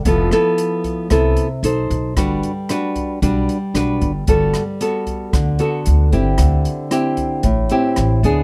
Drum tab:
HH |xxxxxxxx|xxxxxxxx|xxxxxxxx|xxxxxxxx|
SD |-r--r---|r-r---r-|-r--r---|r-r---r-|
BD |o--oo--o|o--oo--o|o--oo--o|o--oo--o|